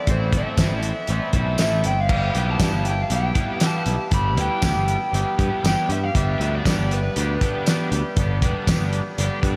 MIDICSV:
0, 0, Header, 1, 7, 480
1, 0, Start_track
1, 0, Tempo, 505902
1, 76, Time_signature, 4, 2, 24, 8
1, 9073, End_track
2, 0, Start_track
2, 0, Title_t, "Overdriven electric guitar"
2, 0, Program_c, 0, 29
2, 0, Note_on_c, 0, 74, 82
2, 105, Note_off_c, 0, 74, 0
2, 113, Note_on_c, 0, 72, 100
2, 341, Note_off_c, 0, 72, 0
2, 351, Note_on_c, 0, 76, 91
2, 1522, Note_off_c, 0, 76, 0
2, 1533, Note_on_c, 0, 76, 93
2, 1766, Note_off_c, 0, 76, 0
2, 1770, Note_on_c, 0, 79, 82
2, 1901, Note_off_c, 0, 79, 0
2, 1901, Note_on_c, 0, 77, 87
2, 2253, Note_off_c, 0, 77, 0
2, 2257, Note_on_c, 0, 79, 89
2, 2375, Note_off_c, 0, 79, 0
2, 2375, Note_on_c, 0, 81, 90
2, 2489, Note_off_c, 0, 81, 0
2, 2504, Note_on_c, 0, 81, 101
2, 2714, Note_off_c, 0, 81, 0
2, 2748, Note_on_c, 0, 79, 94
2, 2867, Note_off_c, 0, 79, 0
2, 2867, Note_on_c, 0, 77, 99
2, 2971, Note_off_c, 0, 77, 0
2, 2990, Note_on_c, 0, 79, 96
2, 3467, Note_off_c, 0, 79, 0
2, 3477, Note_on_c, 0, 81, 102
2, 3926, Note_off_c, 0, 81, 0
2, 3930, Note_on_c, 0, 83, 111
2, 4169, Note_off_c, 0, 83, 0
2, 4180, Note_on_c, 0, 79, 92
2, 5370, Note_off_c, 0, 79, 0
2, 5381, Note_on_c, 0, 79, 89
2, 5592, Note_off_c, 0, 79, 0
2, 5618, Note_on_c, 0, 76, 80
2, 5726, Note_off_c, 0, 76, 0
2, 5726, Note_on_c, 0, 77, 86
2, 5843, Note_off_c, 0, 77, 0
2, 5847, Note_on_c, 0, 76, 106
2, 6081, Note_off_c, 0, 76, 0
2, 6093, Note_on_c, 0, 76, 87
2, 6207, Note_off_c, 0, 76, 0
2, 6209, Note_on_c, 0, 74, 84
2, 6325, Note_off_c, 0, 74, 0
2, 6342, Note_on_c, 0, 74, 90
2, 6552, Note_off_c, 0, 74, 0
2, 6581, Note_on_c, 0, 71, 84
2, 9073, Note_off_c, 0, 71, 0
2, 9073, End_track
3, 0, Start_track
3, 0, Title_t, "Analog synth pad"
3, 0, Program_c, 1, 89
3, 0, Note_on_c, 1, 69, 80
3, 0, Note_on_c, 1, 83, 81
3, 1958, Note_off_c, 1, 69, 0
3, 2004, Note_on_c, 1, 71, 68
3, 2008, Note_on_c, 1, 67, 74
3, 3880, Note_off_c, 1, 83, 0
3, 3914, Note_on_c, 1, 81, 87
3, 5814, Note_off_c, 1, 81, 0
3, 5834, Note_on_c, 1, 83, 86
3, 5835, Note_on_c, 1, 74, 68
3, 9073, Note_off_c, 1, 67, 0
3, 9073, Note_off_c, 1, 71, 0
3, 9073, Note_off_c, 1, 74, 0
3, 9073, Note_off_c, 1, 83, 0
3, 9073, End_track
4, 0, Start_track
4, 0, Title_t, "Overdriven electric guitar"
4, 0, Program_c, 2, 29
4, 312, Note_on_c, 2, 69, 101
4, 554, Note_off_c, 2, 69, 0
4, 565, Note_on_c, 2, 69, 70
4, 873, Note_off_c, 2, 69, 0
4, 1278, Note_on_c, 2, 69, 95
4, 1508, Note_off_c, 2, 69, 0
4, 1520, Note_on_c, 2, 69, 70
4, 1830, Note_off_c, 2, 69, 0
4, 2226, Note_on_c, 2, 55, 70
4, 2445, Note_off_c, 2, 55, 0
4, 3188, Note_on_c, 2, 55, 79
4, 3412, Note_off_c, 2, 55, 0
4, 4162, Note_on_c, 2, 55, 79
4, 4377, Note_off_c, 2, 55, 0
4, 5120, Note_on_c, 2, 55, 74
4, 5342, Note_off_c, 2, 55, 0
4, 6312, Note_on_c, 2, 67, 77
4, 6625, Note_off_c, 2, 67, 0
4, 9073, End_track
5, 0, Start_track
5, 0, Title_t, "Clean electric guitar"
5, 0, Program_c, 3, 27
5, 70, Note_on_c, 3, 45, 90
5, 76, Note_on_c, 3, 52, 101
5, 84, Note_on_c, 3, 60, 95
5, 93, Note_on_c, 3, 59, 92
5, 98, Note_on_c, 3, 64, 102
5, 313, Note_off_c, 3, 64, 0
5, 317, Note_on_c, 3, 64, 69
5, 325, Note_off_c, 3, 59, 0
5, 329, Note_on_c, 3, 59, 63
5, 334, Note_off_c, 3, 60, 0
5, 345, Note_on_c, 3, 60, 58
5, 548, Note_off_c, 3, 52, 0
5, 550, Note_off_c, 3, 60, 0
5, 552, Note_on_c, 3, 52, 78
5, 553, Note_off_c, 3, 45, 0
5, 561, Note_on_c, 3, 60, 77
5, 571, Note_off_c, 3, 59, 0
5, 575, Note_on_c, 3, 59, 83
5, 579, Note_off_c, 3, 64, 0
5, 583, Note_on_c, 3, 64, 93
5, 1031, Note_on_c, 3, 45, 86
5, 1036, Note_off_c, 3, 60, 0
5, 1038, Note_off_c, 3, 52, 0
5, 1041, Note_on_c, 3, 52, 101
5, 1048, Note_on_c, 3, 60, 102
5, 1052, Note_off_c, 3, 59, 0
5, 1055, Note_on_c, 3, 59, 110
5, 1062, Note_off_c, 3, 64, 0
5, 1066, Note_on_c, 3, 64, 106
5, 1260, Note_off_c, 3, 64, 0
5, 1264, Note_on_c, 3, 64, 67
5, 1274, Note_off_c, 3, 59, 0
5, 1278, Note_on_c, 3, 59, 62
5, 1286, Note_off_c, 3, 60, 0
5, 1298, Note_on_c, 3, 60, 58
5, 1498, Note_off_c, 3, 52, 0
5, 1502, Note_on_c, 3, 52, 74
5, 1504, Note_off_c, 3, 60, 0
5, 1513, Note_off_c, 3, 45, 0
5, 1516, Note_on_c, 3, 60, 65
5, 1522, Note_off_c, 3, 59, 0
5, 1526, Note_on_c, 3, 59, 77
5, 1531, Note_off_c, 3, 64, 0
5, 1534, Note_on_c, 3, 64, 73
5, 1740, Note_off_c, 3, 64, 0
5, 1744, Note_on_c, 3, 64, 64
5, 1756, Note_off_c, 3, 59, 0
5, 1759, Note_on_c, 3, 59, 64
5, 1763, Note_off_c, 3, 60, 0
5, 1775, Note_on_c, 3, 60, 59
5, 1980, Note_off_c, 3, 52, 0
5, 1983, Note_on_c, 3, 55, 101
5, 1989, Note_off_c, 3, 60, 0
5, 1993, Note_off_c, 3, 59, 0
5, 1993, Note_on_c, 3, 59, 89
5, 2002, Note_off_c, 3, 64, 0
5, 2002, Note_on_c, 3, 64, 101
5, 2014, Note_on_c, 3, 67, 92
5, 2221, Note_off_c, 3, 67, 0
5, 2225, Note_on_c, 3, 67, 75
5, 2237, Note_off_c, 3, 64, 0
5, 2241, Note_on_c, 3, 64, 68
5, 2253, Note_off_c, 3, 59, 0
5, 2257, Note_on_c, 3, 59, 61
5, 2458, Note_off_c, 3, 55, 0
5, 2462, Note_on_c, 3, 55, 79
5, 2467, Note_off_c, 3, 59, 0
5, 2471, Note_on_c, 3, 59, 83
5, 2481, Note_off_c, 3, 64, 0
5, 2485, Note_on_c, 3, 64, 88
5, 2488, Note_off_c, 3, 67, 0
5, 2491, Note_on_c, 3, 67, 85
5, 2927, Note_off_c, 3, 55, 0
5, 2931, Note_on_c, 3, 55, 106
5, 2939, Note_off_c, 3, 59, 0
5, 2940, Note_off_c, 3, 64, 0
5, 2943, Note_on_c, 3, 59, 94
5, 2951, Note_on_c, 3, 64, 102
5, 2958, Note_off_c, 3, 67, 0
5, 2962, Note_on_c, 3, 67, 108
5, 3167, Note_off_c, 3, 67, 0
5, 3170, Note_on_c, 3, 67, 61
5, 3179, Note_off_c, 3, 64, 0
5, 3190, Note_on_c, 3, 64, 53
5, 3196, Note_off_c, 3, 59, 0
5, 3199, Note_on_c, 3, 59, 56
5, 3406, Note_off_c, 3, 55, 0
5, 3410, Note_on_c, 3, 55, 69
5, 3417, Note_off_c, 3, 59, 0
5, 3420, Note_off_c, 3, 64, 0
5, 3421, Note_on_c, 3, 59, 72
5, 3431, Note_on_c, 3, 64, 74
5, 3439, Note_off_c, 3, 67, 0
5, 3443, Note_on_c, 3, 67, 79
5, 3654, Note_off_c, 3, 67, 0
5, 3657, Note_on_c, 3, 67, 61
5, 3669, Note_off_c, 3, 64, 0
5, 3681, Note_on_c, 3, 64, 64
5, 3686, Note_off_c, 3, 59, 0
5, 3690, Note_on_c, 3, 59, 57
5, 3892, Note_off_c, 3, 55, 0
5, 3895, Note_on_c, 3, 55, 94
5, 3900, Note_off_c, 3, 59, 0
5, 3903, Note_on_c, 3, 59, 90
5, 3905, Note_off_c, 3, 64, 0
5, 3916, Note_on_c, 3, 64, 109
5, 3922, Note_off_c, 3, 67, 0
5, 3926, Note_on_c, 3, 67, 109
5, 4134, Note_off_c, 3, 67, 0
5, 4138, Note_on_c, 3, 67, 68
5, 4140, Note_off_c, 3, 64, 0
5, 4152, Note_on_c, 3, 64, 62
5, 4166, Note_off_c, 3, 59, 0
5, 4169, Note_on_c, 3, 59, 56
5, 4377, Note_off_c, 3, 55, 0
5, 4380, Note_on_c, 3, 55, 83
5, 4389, Note_off_c, 3, 59, 0
5, 4390, Note_off_c, 3, 64, 0
5, 4393, Note_on_c, 3, 59, 83
5, 4402, Note_on_c, 3, 64, 84
5, 4408, Note_off_c, 3, 67, 0
5, 4412, Note_on_c, 3, 67, 80
5, 4849, Note_off_c, 3, 55, 0
5, 4853, Note_on_c, 3, 55, 97
5, 4864, Note_off_c, 3, 59, 0
5, 4868, Note_on_c, 3, 59, 109
5, 4870, Note_off_c, 3, 64, 0
5, 4881, Note_on_c, 3, 64, 102
5, 4885, Note_off_c, 3, 67, 0
5, 4889, Note_on_c, 3, 67, 116
5, 5094, Note_off_c, 3, 67, 0
5, 5098, Note_on_c, 3, 67, 63
5, 5101, Note_off_c, 3, 64, 0
5, 5113, Note_on_c, 3, 64, 55
5, 5130, Note_off_c, 3, 59, 0
5, 5134, Note_on_c, 3, 59, 56
5, 5334, Note_off_c, 3, 55, 0
5, 5338, Note_on_c, 3, 55, 70
5, 5349, Note_off_c, 3, 64, 0
5, 5351, Note_off_c, 3, 59, 0
5, 5355, Note_on_c, 3, 59, 77
5, 5360, Note_on_c, 3, 64, 72
5, 5365, Note_off_c, 3, 67, 0
5, 5369, Note_on_c, 3, 67, 77
5, 5579, Note_off_c, 3, 67, 0
5, 5583, Note_on_c, 3, 67, 68
5, 5592, Note_off_c, 3, 64, 0
5, 5604, Note_on_c, 3, 64, 67
5, 5612, Note_off_c, 3, 59, 0
5, 5616, Note_on_c, 3, 59, 56
5, 5825, Note_off_c, 3, 64, 0
5, 5825, Note_on_c, 3, 43, 99
5, 5832, Note_off_c, 3, 55, 0
5, 5834, Note_on_c, 3, 50, 88
5, 5836, Note_on_c, 3, 55, 106
5, 5842, Note_off_c, 3, 59, 0
5, 5846, Note_on_c, 3, 59, 97
5, 5849, Note_on_c, 3, 62, 100
5, 5852, Note_off_c, 3, 67, 0
5, 5856, Note_on_c, 3, 67, 106
5, 6065, Note_off_c, 3, 67, 0
5, 6068, Note_on_c, 3, 67, 70
5, 6081, Note_off_c, 3, 62, 0
5, 6085, Note_off_c, 3, 59, 0
5, 6085, Note_on_c, 3, 62, 67
5, 6089, Note_on_c, 3, 59, 62
5, 6098, Note_off_c, 3, 55, 0
5, 6102, Note_on_c, 3, 55, 64
5, 6310, Note_off_c, 3, 55, 0
5, 6314, Note_off_c, 3, 50, 0
5, 6314, Note_on_c, 3, 55, 74
5, 6323, Note_off_c, 3, 59, 0
5, 6327, Note_on_c, 3, 59, 91
5, 6330, Note_off_c, 3, 62, 0
5, 6334, Note_on_c, 3, 62, 86
5, 6347, Note_off_c, 3, 67, 0
5, 6351, Note_on_c, 3, 67, 92
5, 6789, Note_off_c, 3, 43, 0
5, 6792, Note_on_c, 3, 43, 98
5, 6798, Note_off_c, 3, 55, 0
5, 6801, Note_on_c, 3, 50, 104
5, 6810, Note_off_c, 3, 59, 0
5, 6810, Note_off_c, 3, 62, 0
5, 6810, Note_on_c, 3, 55, 106
5, 6814, Note_off_c, 3, 67, 0
5, 6814, Note_on_c, 3, 59, 106
5, 6822, Note_on_c, 3, 62, 111
5, 6825, Note_on_c, 3, 67, 107
5, 7017, Note_off_c, 3, 67, 0
5, 7028, Note_on_c, 3, 67, 65
5, 7031, Note_off_c, 3, 62, 0
5, 7043, Note_on_c, 3, 62, 67
5, 7048, Note_off_c, 3, 55, 0
5, 7048, Note_off_c, 3, 59, 0
5, 7052, Note_on_c, 3, 59, 56
5, 7059, Note_on_c, 3, 55, 57
5, 7261, Note_off_c, 3, 55, 0
5, 7273, Note_off_c, 3, 43, 0
5, 7273, Note_on_c, 3, 55, 75
5, 7277, Note_off_c, 3, 50, 0
5, 7281, Note_off_c, 3, 59, 0
5, 7281, Note_off_c, 3, 62, 0
5, 7285, Note_on_c, 3, 59, 75
5, 7292, Note_off_c, 3, 67, 0
5, 7292, Note_on_c, 3, 62, 78
5, 7304, Note_on_c, 3, 67, 77
5, 7497, Note_off_c, 3, 67, 0
5, 7509, Note_on_c, 3, 67, 79
5, 7514, Note_off_c, 3, 62, 0
5, 7526, Note_on_c, 3, 62, 62
5, 7529, Note_off_c, 3, 59, 0
5, 7531, Note_off_c, 3, 55, 0
5, 7533, Note_on_c, 3, 59, 63
5, 7542, Note_on_c, 3, 55, 65
5, 7753, Note_off_c, 3, 55, 0
5, 7754, Note_on_c, 3, 43, 104
5, 7762, Note_on_c, 3, 50, 92
5, 7763, Note_off_c, 3, 59, 0
5, 7765, Note_on_c, 3, 55, 95
5, 7766, Note_off_c, 3, 62, 0
5, 7774, Note_on_c, 3, 59, 105
5, 7775, Note_off_c, 3, 67, 0
5, 7777, Note_on_c, 3, 62, 106
5, 7786, Note_on_c, 3, 67, 97
5, 7980, Note_off_c, 3, 67, 0
5, 7990, Note_off_c, 3, 62, 0
5, 7992, Note_on_c, 3, 67, 73
5, 8001, Note_off_c, 3, 59, 0
5, 8001, Note_on_c, 3, 62, 70
5, 8012, Note_off_c, 3, 55, 0
5, 8012, Note_on_c, 3, 59, 61
5, 8024, Note_on_c, 3, 55, 61
5, 8222, Note_off_c, 3, 55, 0
5, 8232, Note_off_c, 3, 59, 0
5, 8233, Note_off_c, 3, 43, 0
5, 8233, Note_on_c, 3, 55, 72
5, 8237, Note_off_c, 3, 50, 0
5, 8243, Note_off_c, 3, 62, 0
5, 8244, Note_on_c, 3, 59, 79
5, 8254, Note_off_c, 3, 67, 0
5, 8254, Note_on_c, 3, 62, 86
5, 8265, Note_on_c, 3, 67, 88
5, 8709, Note_on_c, 3, 43, 98
5, 8711, Note_off_c, 3, 55, 0
5, 8717, Note_off_c, 3, 59, 0
5, 8717, Note_on_c, 3, 50, 101
5, 8720, Note_off_c, 3, 62, 0
5, 8722, Note_on_c, 3, 55, 93
5, 8725, Note_off_c, 3, 67, 0
5, 8728, Note_on_c, 3, 59, 101
5, 8732, Note_on_c, 3, 62, 103
5, 8737, Note_on_c, 3, 67, 114
5, 8928, Note_off_c, 3, 67, 0
5, 8939, Note_on_c, 3, 67, 63
5, 8943, Note_off_c, 3, 62, 0
5, 8953, Note_off_c, 3, 59, 0
5, 8954, Note_on_c, 3, 62, 61
5, 8961, Note_off_c, 3, 55, 0
5, 8965, Note_on_c, 3, 59, 58
5, 8972, Note_on_c, 3, 55, 54
5, 9073, Note_off_c, 3, 43, 0
5, 9073, Note_off_c, 3, 50, 0
5, 9073, Note_off_c, 3, 55, 0
5, 9073, Note_off_c, 3, 59, 0
5, 9073, Note_off_c, 3, 62, 0
5, 9073, Note_off_c, 3, 67, 0
5, 9073, End_track
6, 0, Start_track
6, 0, Title_t, "Picked electric bass"
6, 0, Program_c, 4, 34
6, 71, Note_on_c, 4, 33, 104
6, 306, Note_on_c, 4, 31, 83
6, 320, Note_off_c, 4, 33, 0
6, 404, Note_off_c, 4, 31, 0
6, 544, Note_on_c, 4, 31, 86
6, 642, Note_off_c, 4, 31, 0
6, 670, Note_on_c, 4, 33, 81
6, 860, Note_off_c, 4, 33, 0
6, 1032, Note_on_c, 4, 33, 98
6, 1127, Note_off_c, 4, 33, 0
6, 1268, Note_on_c, 4, 35, 84
6, 1487, Note_off_c, 4, 35, 0
6, 1509, Note_on_c, 4, 33, 89
6, 1728, Note_off_c, 4, 33, 0
6, 1753, Note_on_c, 4, 31, 77
6, 1970, Note_off_c, 4, 31, 0
6, 1985, Note_on_c, 4, 31, 88
6, 2177, Note_off_c, 4, 31, 0
6, 2232, Note_on_c, 4, 35, 82
6, 2421, Note_off_c, 4, 35, 0
6, 2462, Note_on_c, 4, 43, 84
6, 2561, Note_off_c, 4, 43, 0
6, 2589, Note_on_c, 4, 31, 77
6, 2873, Note_off_c, 4, 31, 0
6, 2944, Note_on_c, 4, 35, 87
6, 3136, Note_off_c, 4, 35, 0
6, 3666, Note_on_c, 4, 35, 83
6, 3764, Note_off_c, 4, 35, 0
6, 3904, Note_on_c, 4, 31, 108
6, 4149, Note_off_c, 4, 31, 0
6, 4149, Note_on_c, 4, 38, 83
6, 4246, Note_off_c, 4, 38, 0
6, 4388, Note_on_c, 4, 38, 86
6, 4485, Note_off_c, 4, 38, 0
6, 4509, Note_on_c, 4, 31, 82
6, 4699, Note_off_c, 4, 31, 0
6, 4869, Note_on_c, 4, 31, 106
6, 4965, Note_off_c, 4, 31, 0
6, 5112, Note_on_c, 4, 43, 86
6, 5207, Note_off_c, 4, 43, 0
6, 5352, Note_on_c, 4, 31, 105
6, 5447, Note_off_c, 4, 31, 0
6, 5589, Note_on_c, 4, 43, 94
6, 5779, Note_off_c, 4, 43, 0
6, 5833, Note_on_c, 4, 31, 98
6, 6021, Note_off_c, 4, 31, 0
6, 6071, Note_on_c, 4, 38, 88
6, 6260, Note_off_c, 4, 38, 0
6, 6315, Note_on_c, 4, 43, 91
6, 6409, Note_off_c, 4, 43, 0
6, 6441, Note_on_c, 4, 31, 80
6, 6719, Note_off_c, 4, 31, 0
6, 6798, Note_on_c, 4, 38, 89
6, 6984, Note_off_c, 4, 38, 0
6, 7513, Note_on_c, 4, 38, 90
6, 7607, Note_off_c, 4, 38, 0
6, 7748, Note_on_c, 4, 31, 103
6, 7989, Note_off_c, 4, 31, 0
6, 7989, Note_on_c, 4, 28, 80
6, 8084, Note_off_c, 4, 28, 0
6, 8228, Note_on_c, 4, 28, 85
6, 8324, Note_off_c, 4, 28, 0
6, 8353, Note_on_c, 4, 31, 81
6, 8541, Note_off_c, 4, 31, 0
6, 8715, Note_on_c, 4, 31, 92
6, 8808, Note_off_c, 4, 31, 0
6, 8947, Note_on_c, 4, 43, 83
6, 9043, Note_off_c, 4, 43, 0
6, 9073, End_track
7, 0, Start_track
7, 0, Title_t, "Drums"
7, 67, Note_on_c, 9, 42, 80
7, 69, Note_on_c, 9, 36, 99
7, 162, Note_off_c, 9, 42, 0
7, 164, Note_off_c, 9, 36, 0
7, 309, Note_on_c, 9, 36, 75
7, 311, Note_on_c, 9, 42, 69
7, 404, Note_off_c, 9, 36, 0
7, 406, Note_off_c, 9, 42, 0
7, 545, Note_on_c, 9, 42, 94
7, 545, Note_on_c, 9, 54, 115
7, 547, Note_on_c, 9, 36, 85
7, 555, Note_on_c, 9, 38, 113
7, 640, Note_off_c, 9, 42, 0
7, 640, Note_off_c, 9, 54, 0
7, 642, Note_off_c, 9, 36, 0
7, 650, Note_off_c, 9, 38, 0
7, 784, Note_on_c, 9, 42, 65
7, 879, Note_off_c, 9, 42, 0
7, 1019, Note_on_c, 9, 42, 83
7, 1113, Note_off_c, 9, 42, 0
7, 1261, Note_on_c, 9, 42, 68
7, 1264, Note_on_c, 9, 36, 87
7, 1355, Note_off_c, 9, 42, 0
7, 1359, Note_off_c, 9, 36, 0
7, 1498, Note_on_c, 9, 42, 81
7, 1498, Note_on_c, 9, 54, 105
7, 1508, Note_on_c, 9, 38, 94
7, 1593, Note_off_c, 9, 42, 0
7, 1593, Note_off_c, 9, 54, 0
7, 1603, Note_off_c, 9, 38, 0
7, 1743, Note_on_c, 9, 42, 70
7, 1838, Note_off_c, 9, 42, 0
7, 1986, Note_on_c, 9, 36, 94
7, 1986, Note_on_c, 9, 49, 88
7, 2081, Note_off_c, 9, 36, 0
7, 2081, Note_off_c, 9, 49, 0
7, 2227, Note_on_c, 9, 42, 74
7, 2322, Note_off_c, 9, 42, 0
7, 2463, Note_on_c, 9, 36, 83
7, 2463, Note_on_c, 9, 42, 94
7, 2463, Note_on_c, 9, 54, 113
7, 2473, Note_on_c, 9, 38, 108
7, 2557, Note_off_c, 9, 42, 0
7, 2557, Note_off_c, 9, 54, 0
7, 2558, Note_off_c, 9, 36, 0
7, 2568, Note_off_c, 9, 38, 0
7, 2704, Note_on_c, 9, 42, 69
7, 2799, Note_off_c, 9, 42, 0
7, 2941, Note_on_c, 9, 42, 96
7, 3036, Note_off_c, 9, 42, 0
7, 3180, Note_on_c, 9, 42, 73
7, 3183, Note_on_c, 9, 36, 88
7, 3275, Note_off_c, 9, 42, 0
7, 3277, Note_off_c, 9, 36, 0
7, 3417, Note_on_c, 9, 42, 93
7, 3417, Note_on_c, 9, 54, 96
7, 3427, Note_on_c, 9, 38, 97
7, 3512, Note_off_c, 9, 42, 0
7, 3512, Note_off_c, 9, 54, 0
7, 3522, Note_off_c, 9, 38, 0
7, 3659, Note_on_c, 9, 42, 77
7, 3754, Note_off_c, 9, 42, 0
7, 3902, Note_on_c, 9, 42, 90
7, 3906, Note_on_c, 9, 36, 96
7, 3997, Note_off_c, 9, 42, 0
7, 4001, Note_off_c, 9, 36, 0
7, 4150, Note_on_c, 9, 42, 73
7, 4245, Note_off_c, 9, 42, 0
7, 4383, Note_on_c, 9, 42, 90
7, 4383, Note_on_c, 9, 54, 109
7, 4388, Note_on_c, 9, 36, 86
7, 4394, Note_on_c, 9, 38, 112
7, 4478, Note_off_c, 9, 42, 0
7, 4478, Note_off_c, 9, 54, 0
7, 4483, Note_off_c, 9, 36, 0
7, 4489, Note_off_c, 9, 38, 0
7, 4630, Note_on_c, 9, 42, 65
7, 4725, Note_off_c, 9, 42, 0
7, 4878, Note_on_c, 9, 42, 82
7, 4973, Note_off_c, 9, 42, 0
7, 5113, Note_on_c, 9, 36, 84
7, 5114, Note_on_c, 9, 42, 71
7, 5208, Note_off_c, 9, 36, 0
7, 5209, Note_off_c, 9, 42, 0
7, 5356, Note_on_c, 9, 42, 80
7, 5356, Note_on_c, 9, 54, 108
7, 5367, Note_on_c, 9, 38, 101
7, 5451, Note_off_c, 9, 42, 0
7, 5451, Note_off_c, 9, 54, 0
7, 5462, Note_off_c, 9, 38, 0
7, 5595, Note_on_c, 9, 42, 70
7, 5690, Note_off_c, 9, 42, 0
7, 5835, Note_on_c, 9, 36, 98
7, 5838, Note_on_c, 9, 42, 77
7, 5930, Note_off_c, 9, 36, 0
7, 5933, Note_off_c, 9, 42, 0
7, 6080, Note_on_c, 9, 42, 66
7, 6175, Note_off_c, 9, 42, 0
7, 6314, Note_on_c, 9, 36, 85
7, 6319, Note_on_c, 9, 42, 90
7, 6319, Note_on_c, 9, 54, 114
7, 6329, Note_on_c, 9, 38, 106
7, 6409, Note_off_c, 9, 36, 0
7, 6414, Note_off_c, 9, 42, 0
7, 6414, Note_off_c, 9, 54, 0
7, 6424, Note_off_c, 9, 38, 0
7, 6559, Note_on_c, 9, 42, 70
7, 6654, Note_off_c, 9, 42, 0
7, 6794, Note_on_c, 9, 42, 95
7, 6888, Note_off_c, 9, 42, 0
7, 7033, Note_on_c, 9, 36, 89
7, 7035, Note_on_c, 9, 42, 76
7, 7128, Note_off_c, 9, 36, 0
7, 7130, Note_off_c, 9, 42, 0
7, 7272, Note_on_c, 9, 42, 93
7, 7272, Note_on_c, 9, 54, 103
7, 7282, Note_on_c, 9, 38, 94
7, 7367, Note_off_c, 9, 42, 0
7, 7367, Note_off_c, 9, 54, 0
7, 7377, Note_off_c, 9, 38, 0
7, 7513, Note_on_c, 9, 42, 79
7, 7608, Note_off_c, 9, 42, 0
7, 7747, Note_on_c, 9, 42, 93
7, 7750, Note_on_c, 9, 36, 103
7, 7842, Note_off_c, 9, 42, 0
7, 7845, Note_off_c, 9, 36, 0
7, 7990, Note_on_c, 9, 36, 85
7, 7992, Note_on_c, 9, 42, 76
7, 8085, Note_off_c, 9, 36, 0
7, 8087, Note_off_c, 9, 42, 0
7, 8230, Note_on_c, 9, 36, 81
7, 8232, Note_on_c, 9, 42, 100
7, 8232, Note_on_c, 9, 54, 108
7, 8242, Note_on_c, 9, 38, 115
7, 8324, Note_off_c, 9, 36, 0
7, 8327, Note_off_c, 9, 42, 0
7, 8327, Note_off_c, 9, 54, 0
7, 8337, Note_off_c, 9, 38, 0
7, 8469, Note_on_c, 9, 42, 70
7, 8564, Note_off_c, 9, 42, 0
7, 8712, Note_on_c, 9, 42, 92
7, 8807, Note_off_c, 9, 42, 0
7, 8947, Note_on_c, 9, 36, 88
7, 8952, Note_on_c, 9, 42, 74
7, 9042, Note_off_c, 9, 36, 0
7, 9047, Note_off_c, 9, 42, 0
7, 9073, End_track
0, 0, End_of_file